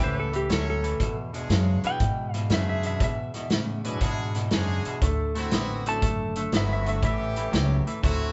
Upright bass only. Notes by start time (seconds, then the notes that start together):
0.00 C#2
0.49 D2
1.49 F#2
1.83 muted upright bass stroke
2.00 G#2
2.50 F#2
3.00 B2
3.51 A2
4.01 G#2
4.51 F#2
4.86 muted upright bass stroke
5.01 D2
5.52 A1
6.02 F#1
6.52 G1
7.02 A1
7.53 C#2
8.03 D2